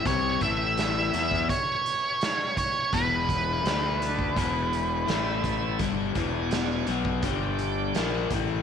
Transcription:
<<
  \new Staff \with { instrumentName = "Lead electric guitar" } { \time 4/4 \key a \major \tempo 4 = 84 cis''8 e''4. cis''4. cis''8 | b'1 | r1 | }
  \new Staff \with { instrumentName = "Tonewheel organ" } { \time 4/4 \key a \major <g' b' e''>1 | <fis' gis' d''>4 <d' a' d''>4 <fis' gis' d''>4 <e' a' e''>4 | <fis' d'' gis''>2 <d' g' d''>4 <gis' d'' fis''>4 | }
  \new Staff \with { instrumentName = "Overdriven electric guitar" } { \clef bass \time 4/4 \key a \major <c g c'>8 <a, e a>4 <e b e'>8 r2 | <e, b, e>4 <d a d'>4 <e, b, e>4 <a, e a>4 | <g, d g>8 <e, b, e>4 <b, fis b>8 <g, d g>4 <ais, f ais>8 <a, e a>8 | }
  \new Staff \with { instrumentName = "Fingered electric bass" } { \clef bass \time 4/4 \key a \major c,8 a,,4 e,8 r2 | e,,4 d,4 e,,4 a,,4 | g,,8 e,,4 b,,8 g,,4 ais,,8 a,,8 | }
  \new DrumStaff \with { instrumentName = "Drums" } \drummode { \time 4/4 <hh bd>8 <hh bd>8 <hh sn>8 hh16 <bd sn>16 <hh bd>8 hh8 <hh sn>8 <hh bd>8 | <hh bd>8 <hh bd>8 <hh sn>8 hh16 bd16 <hh bd>8 hh8 <hh sn>8 <hh bd>8 | <hh bd>8 <hh bd>8 <hh sn>8 hh16 bd16 <hh bd>8 hh8 <hh sn>8 <hh bd>8 | }
>>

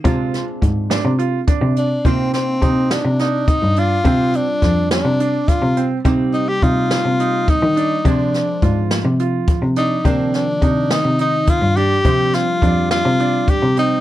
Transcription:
<<
  \new Staff \with { instrumentName = "Tenor saxophone" } { \time 7/8 \key c \minor \tempo 4 = 105 r2. d'8 | c'8 c'4 d'8 d'8 ees'8 f'8~ | f'8 d'4 d'4 f'8. r16 | r8 ees'16 g'16 f'4. ees'4 |
d'4. r4. ees'8 | d'8 d'4 ees'8 ees'8 f'8 g'8~ | g'8 f'4 f'4 g'8 ees'8 | }
  \new Staff \with { instrumentName = "Grand piano" } { \time 7/8 \key c \minor f'4 r8 d'8 f'8 d'4 | c'4 ees'4 ees'4 d'8 | c'4 d'4 d'4 c'8 | c'4 ees'4 ees'4 d'8 |
d'4 f'4 f'4 d'8 | c'4 ees'4 ees'4 d'8 | c'4 d'4 d'4 c'8 | }
  \new Staff \with { instrumentName = "Hollow-body jazz guitar" } { \time 7/8 \key c \minor <aes c' d' f'>2.~ <aes c' d' f'>8 | <bes d' ees' f'>2.~ <bes d' ees' f'>8 | <g c' d' f'>2.~ <g c' d' f'>8 | <g bes c' ees'>2.~ <g bes c' ees'>8 |
<f aes c' d'>2.~ <f aes c' d'>8 | <ees f bes d'>2.~ <ees f bes d'>8 | <f g c' d'>2.~ <f g c' d'>8 | }
  \new Staff \with { instrumentName = "Cello" } { \clef bass \time 7/8 \key c \minor c8 r8 aes,8. c8 r8 c8 r16 | c4 c8 r16 c4 g,8 r16 | c8 r8 f,8. c8 r8 c8 r16 | c4 c8 r16 c4 ees8 r16 |
c8 r8 aes,8. c8 r8 c8 r16 | c4 c8 r16 c4 g,8 r16 | c8 r8 f,8. c8 r8 c8 r16 | }
  \new DrumStaff \with { instrumentName = "Drums" } \drummode { \time 7/8 <hh bd>8 <hh sn>8 <hh bd>8 <hh sn>8 hh8 <hh bd>8 hh8 | <hh bd>8 <hh sn>8 <hh bd>8 <hh sn>8 <hh sn>8 <hh bd>8 hh8 | <hh bd>8 hh8 <hh bd sn>8 <hh sn>8 hh8 <hh bd>8 hh8 | <hh bd>8 hh8 <hh bd>8 <hh sn>8 hh8 <hh bd>8 hh8 |
<hh bd>8 <hh sn>8 <hh bd>8 <hh sn>8 hh8 <hh bd>8 hh8 | <hh bd>8 <hh sn>8 <hh bd>8 <hh sn>8 hh8 <hh bd>8 hh8 | <hh bd>8 <hh sn>8 <hh bd>8 <hh sn>8 hh8 <hh bd>8 hh8 | }
>>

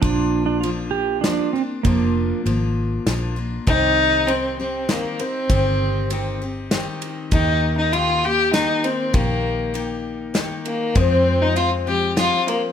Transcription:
<<
  \new Staff \with { instrumentName = "Fiddle" } { \time 3/4 \key c \minor \tempo 4 = 99 r2. | r2. | ees'4 c'8 c'8 bes8 c'8~ | c'4. r4. |
ees'8. ees'16 f'8 g'8 ees'8 c'8 | bes4 r4. bes8 | c'8. ees'16 f'8 g'8 f'8 bes8 | }
  \new Staff \with { instrumentName = "Pedal steel guitar" } { \time 3/4 \key c \minor d'8. d'16 f'8 g'8 d'8 c'8 | bes4 r2 | r2. | r2. |
r2. | r2. | r2. | }
  \new Staff \with { instrumentName = "Steel-string acoustic guitar" } { \time 3/4 \key c \minor <bes, f bes d' f'>4 <f bes d' f'>4 <f bes d' f'>8 <bes d' f'>8 | <bes, f bes d' f'>4 <f bes d' f'>4 <f bes d' f'>8 <bes d' f'>8 | <c ees c' ees' g'>4 <ees c' ees' g'>8 <c' ees' g'>8 <ees c' ees' g'>8 <c' ees' g'>8 | <c ees c' ees' g'>4 <ees c' ees' g'>8 <c' ees' g'>8 <ees c' ees' g'>4 |
<ees bes ees' g'>4 <ees bes ees' g'>8 <bes ees' g'>8 <ees bes ees' g'>4 | <ees bes ees' g'>4 <ees bes ees' g'>4 <ees bes ees' g'>4 | <f, c f aes c' f'>4 <f aes c' f'>8 <f aes c' f'>8 <f aes c' f'>4 | }
  \new Staff \with { instrumentName = "Fingered electric bass" } { \clef bass \time 3/4 \key c \minor bes,,2. | f,,4 aes,,4 bes,,4 | c,2. | g,,2. |
ees,2. | bes,,2. | f,2. | }
  \new DrumStaff \with { instrumentName = "Drums" } \drummode { \time 3/4 <bd cymr>4 cymr4 <cymr sn>4 | <bd cymr>4 cymr4 <cymr sn>4 | <bd cymr>4 cymr4 <cymr sn>8 cymr8 | <bd cymr>4 cymr4 <cymr sn>8 cymr8 |
<bd cymr>4 cymr4 <cymr sn>8 cymr8 | <bd cymr>4 cymr4 <cymr sn>8 cymr8 | <bd cymr>4 cymr4 <cymr sn>8 cymr8 | }
>>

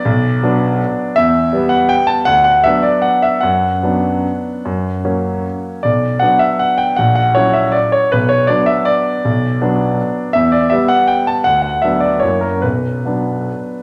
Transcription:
<<
  \new Staff \with { instrumentName = "Grand piano" } { \time 3/4 \key b \minor \tempo 4 = 157 d''2. | e''4. fis''8 g''8 a''8 | fis''8 fis''8 e''8 d''8 fis''8 e''8 | fis''2.~ |
fis''2~ fis''8 r8 | d''4 fis''8 e''8 fis''8 g''8 | fis''8 fis''8 cis''8 e''8 d''8 cis''8 | b'8 cis''8 d''8 e''8 d''4~ |
d''2. | e''8 d''8 e''8 fis''8 g''8 a''8 | fis''8 fis''8 e''8 d''8 cis''8 ais'8 | b'2. | }
  \new Staff \with { instrumentName = "Grand piano" } { \clef bass \time 3/4 \key b \minor b,,4 <fis b d'>2 | e,4 <g b>2 | d,4 <fis b d'>2 | fis,4 <fis b d'>2 |
fis,4 <fis ais cis'>2 | b,,4 <fis b d'>2 | ais,,4 <fis cis' e'>2 | b,,4 <fis b d'>2 |
b,,4 <fis b d'>2 | e,4 <g b>2 | d,4 <fis b d'>4 <fis, fis ais e'>4 | b,,4 <fis b d'>2 | }
>>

